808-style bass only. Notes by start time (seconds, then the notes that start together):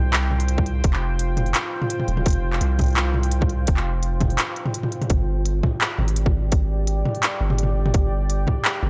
Already playing: C2
0.84 F1
2.08 D#1
2.26 F1
2.61 C2
3.68 F1
5.10 G1
5.99 G#1
7.41 G1
7.94 G1
8.83 G#1